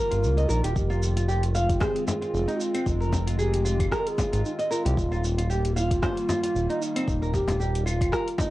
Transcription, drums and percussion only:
0.12 closed hi-hat, shaker
0.24 shaker
0.38 closed hi-hat, shaker
0.50 shaker
0.64 closed hi-hat, shaker
0.76 kick, shaker
0.91 shaker
1.03 shaker
1.17 closed hi-hat, shaker
1.29 shaker
1.43 closed hi-hat, shaker
1.55 shaker
1.69 kick, closed hi-hat, shaker
1.80 kick, cross-stick, frame drum, shaker
1.96 closed hi-hat, shaker
2.08 frame drum, shaker
2.22 closed hi-hat, shaker
2.34 shaker
2.48 closed hi-hat, shaker
2.60 shaker
2.75 closed hi-hat, claves, shaker
2.86 kick, shaker
3.01 shaker
3.12 kick, frame drum, shaker
3.27 closed hi-hat, shaker
3.39 shaker
3.54 closed hi-hat, shaker
3.66 shaker
3.80 kick, closed hi-hat, claves, shaker
3.92 kick, cross-stick, shaker
4.07 closed hi-hat, shaker
4.18 kick, frame drum, shaker
4.33 closed hi-hat, shaker
4.45 shaker
4.59 closed hi-hat, shaker
4.71 shaker
4.86 closed hi-hat, shaker
4.97 kick, shaker
5.12 shaker
5.24 shaker
5.38 closed hi-hat, shaker
5.50 shaker
5.65 closed hi-hat, shaker
5.77 shaker
5.91 kick, closed hi-hat, shaker
6.02 kick, cross-stick, frame drum, shaker
6.17 closed hi-hat, shaker
6.29 frame drum, shaker
6.43 closed hi-hat, shaker
6.56 shaker
6.70 closed hi-hat, shaker
6.82 shaker
6.96 closed hi-hat, claves, shaker
7.08 kick, shaker
7.23 shaker
7.34 kick, frame drum, shaker
7.48 closed hi-hat, frame drum, shaker
7.61 shaker
7.75 closed hi-hat, shaker
7.87 claves, shaker
8.01 kick, closed hi-hat, claves, shaker
8.13 kick, cross-stick, shaker
8.28 closed hi-hat, shaker
8.38 kick, frame drum, shaker

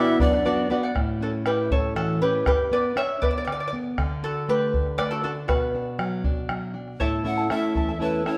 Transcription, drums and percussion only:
0.08 bombo rim
0.20 bombo low
0.33 bombo rim
0.71 bombo rim
0.84 bombo rim
0.96 bombo rim, bombo low
1.08 bombo rim
1.46 bombo rim
1.71 bombo low
1.84 bombo rim
1.96 bombo rim
2.46 bombo rim, bombo low
2.60 bombo rim
2.97 bombo rim
3.22 bombo low
3.36 bombo rim
3.48 bombo rim
3.98 bombo rim, bombo low
4.11 bombo rim
4.74 bombo low
4.86 bombo rim
4.99 bombo rim
5.49 bombo rim, bombo low
5.62 bombo rim
5.99 bombo rim
6.24 bombo low
6.49 bombo rim
6.75 bombo rim
6.88 bombo rim
7.00 bombo low
7.50 bombo rim
7.75 bombo low
8.01 bombo rim
8.26 bombo rim

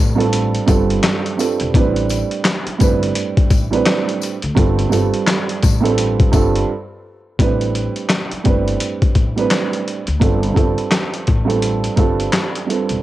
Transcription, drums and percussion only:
0.20 closed hi-hat
0.33 closed hi-hat
0.55 closed hi-hat
0.68 kick, closed hi-hat, tambourine
0.90 closed hi-hat
1.03 snare, clap, closed hi-hat
1.26 closed hi-hat
1.39 closed hi-hat, tambourine
1.60 closed hi-hat
1.74 kick, closed hi-hat
1.96 closed hi-hat
2.09 closed hi-hat, tambourine
2.31 closed hi-hat
2.45 snare, clap, closed hi-hat
2.67 closed hi-hat
2.80 kick, closed hi-hat, tambourine
3.03 closed hi-hat
3.15 closed hi-hat
3.37 kick, closed hi-hat
3.50 kick, closed hi-hat, tambourine
3.73 closed hi-hat
3.85 snare, clap, closed hi-hat
4.09 closed hi-hat
4.22 closed hi-hat, tambourine
4.42 closed hi-hat
4.57 kick, closed hi-hat
4.79 closed hi-hat
4.92 closed hi-hat, tambourine
5.14 closed hi-hat
5.27 snare, clap, closed hi-hat
5.49 closed hi-hat
5.63 kick, closed hi-hat, tambourine
5.85 closed hi-hat
5.98 closed hi-hat
6.20 kick, closed hi-hat
6.33 kick, closed hi-hat, tambourine
6.55 closed hi-hat
7.39 kick, closed hi-hat
7.61 closed hi-hat
7.75 closed hi-hat
7.96 closed hi-hat
8.09 snare, clap, closed hi-hat
8.31 closed hi-hat
8.45 kick, closed hi-hat
8.68 closed hi-hat
8.80 closed hi-hat
9.02 kick, closed hi-hat
9.15 kick, closed hi-hat
9.38 closed hi-hat
9.50 snare, clap, closed hi-hat
9.73 closed hi-hat
9.88 closed hi-hat
10.07 closed hi-hat
10.21 kick, closed hi-hat
10.43 closed hi-hat
10.56 kick, closed hi-hat
10.78 closed hi-hat
10.91 snare, clap, closed hi-hat
11.14 closed hi-hat
11.27 kick, closed hi-hat
11.50 closed hi-hat
11.62 closed hi-hat
11.84 closed hi-hat
11.97 kick, closed hi-hat
12.20 closed hi-hat
12.32 snare, clap, closed hi-hat
12.55 closed hi-hat
12.70 closed hi-hat
12.89 closed hi-hat

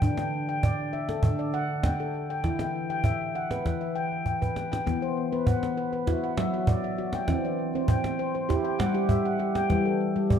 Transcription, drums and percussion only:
0.02 cajon bass
0.17 cajon slap
0.63 cajon bass
0.93 cajon slap
1.09 cajon slap
1.23 cajon bass
1.38 cajon slap
1.53 cajon slap
1.83 cajon bass, cajon slap
2.14 cajon slap
2.44 cajon bass, cajon slap
2.59 cajon slap
2.90 cajon slap
3.04 cajon bass
3.51 cajon slap
3.66 cajon bass, cajon slap
4.12 cajon slap
4.26 cajon bass
4.42 cajon bass
4.56 cajon slap
4.73 cajon slap
4.87 cajon bass, cajon slap
5.33 cajon slap
5.47 cajon bass
5.63 cajon slap
5.93 cajon slap
6.07 cajon bass, cajon slap
6.38 cajon slap
6.67 cajon bass
6.83 cajon slap
6.97 cajon slap
7.13 cajon slap
7.28 cajon bass, cajon slap
7.74 cajon slap
7.88 cajon bass
8.04 cajon slap
8.35 cajon slap
8.50 cajon bass, cajon slap
8.80 cajon slap
9.09 cajon bass
9.26 cajon slap
9.40 cajon slap
9.55 cajon slap
9.70 cajon bass, cajon slap
10.16 cajon slap
10.30 cajon bass

